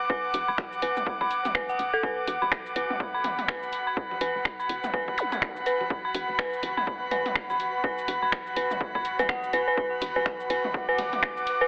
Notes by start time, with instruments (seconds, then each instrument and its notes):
Already playing: analog synth pad F#5 D6
0.10 fm bass B1, synth bell B4, kick
0.34 fm bass E2, open hi-hat, cabasa
0.48 fm bass F#1, synth bell B5
0.58 finger snap, kick, open hi-hat, high conga
0.72 fm bass B1, cabasa
0.82 fm bass D2, synth bell B4, open hi-hat
0.97 fm bass B1, mid tom, cabasa
1.06 kick
1.21 synth bell B5, kick
1.31 open hi-hat, cabasa
1.45 open hi-hat, mid tom, high conga, cabasa
1.55 synth bell B4, finger snap, kick
1.69 synth bell F#5, cabasa
1.79 fm bass B1, open hi-hat, cabasa
1.94 synth bell A4
2.03 fm bass B1, synth texture F#4, synth bell B4, kick
2.27 fm bass E2, open hi-hat, cabasa
2.42 fm bass F#1, synth bell B5, high conga
2.52 finger snap, kick, open hi-hat
2.66 fm bass B1, cabasa
2.76 fm bass D2, synth bell B4, open hi-hat
2.90 fm bass B1, mid tom
2.94 analog synth pad B5
3.00 kick
3.14 synth bell B5
3.24 open hi-hat, mid tom, high conga
3.39 open hi-hat, mid tom
3.48 synth bell B4, finger snap, kick
3.63 cabasa
3.73 open hi-hat, cabasa
3.87 synth bell B5
3.97 fm bass B1, kick
4.11 high conga
4.21 fm bass E2, synth bell B4, open hi-hat
4.35 fm bass F#1
4.45 finger snap, kick, open hi-hat
4.60 fm bass B1, synth bell B5, cabasa
4.69 fm bass D2, open hi-hat
4.84 fm bass B1, mid tom, cabasa
4.94 synth bell B4, kick, high conga
5.08 kick
5.18 open hi-hat, zap, cabasa
5.32 synth bell B5, open hi-hat, mid tom, cabasa
5.42 finger snap, kick
5.56 cabasa
5.66 synth bell B4, open hi-hat, cabasa
5.81 high conga
5.90 fm bass B1, kick
6.05 synth bell B5
6.14 fm bass E2, open hi-hat, cabasa
6.29 fm bass F#1
6.39 synth bell B4, finger snap, kick, open hi-hat
6.53 fm bass B1, cabasa
6.63 fm bass D2, open hi-hat, high conga
6.77 fm bass B1, synth bell B5, mid tom
6.87 kick
7.11 synth bell B4, open hi-hat, mid tom
7.26 open hi-hat, mid tom
7.35 finger snap, kick
7.50 synth bell B5, high conga, cabasa
7.60 open hi-hat, cabasa
7.84 fm bass B1, synth bell B4, kick
7.98 cabasa
8.08 fm bass E2, open hi-hat
8.22 fm bass F#1, synth bell B5
8.32 finger snap, kick, open hi-hat, high conga
8.47 fm bass B1, cabasa
8.56 fm bass D2, synth bell B4, open hi-hat
8.71 fm bass B1, mid tom, cabasa
8.81 kick
8.95 fm bass A1, synth bell B5, kick
9.05 open hi-hat, cabasa
9.19 synth bell B4, open hi-hat, mid tom, high conga, cabasa
9.29 synth bell F#5, finger snap, kick
9.43 cabasa
9.53 fm bass D2, synth bell B4, open hi-hat, cabasa
9.68 synth bell B4
9.77 fm bass B1, synth bell B4, kick
10.02 fm bass E2, open hi-hat, ride, cabasa
10.16 fm bass F#1, synth bell B4, high conga
10.26 finger snap, kick, open hi-hat
10.40 fm bass B1, cabasa
10.50 fm bass D2, synth bell B4, open hi-hat, ride
10.64 fm bass B1, mid tom
10.69 analog synth pad D6
10.74 kick
10.89 synth bell B4
10.98 open hi-hat, mid tom, ride, high conga
11.13 open hi-hat, mid tom
11.23 synth bell B4, finger snap, kick
11.37 cabasa
11.47 open hi-hat, ride, cabasa
11.61 synth bell B4